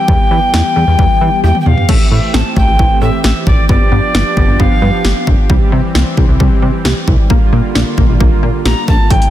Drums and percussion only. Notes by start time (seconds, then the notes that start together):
0.08 kick
0.54 snare
0.99 kick
1.44 high tom
1.55 mid tom
1.66 mid tom
1.78 floor tom
1.89 kick, crash
2.34 snare
2.56 kick
2.79 kick
3.24 snare
3.47 kick
3.69 kick
4.15 snare
4.37 kick
4.60 kick
5.05 snare
5.27 kick
5.50 kick
5.95 snare
6.17 kick
6.40 kick
6.85 snare
7.08 kick
7.30 kick
7.75 snare
7.98 kick
8.21 kick
8.66 snare
8.88 kick
9.11 kick, closed hi-hat
9.22 closed hi-hat